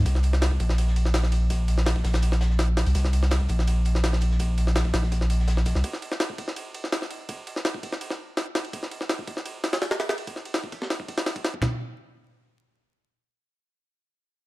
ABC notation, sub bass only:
X:1
M:4/4
L:1/16
Q:1/4=166
K:Bbdor
V:1 name="Sub bass" clef=bass
C,,6 B,,,8- B,,,2- | B,,,6 B,,,8- B,,, C,, | C,,6 B,,,8- B,,,2- | B,,,6 B,,,8- B,,, C,, |
z16 | z16 | z16 | z16 |
z16 | z16 |]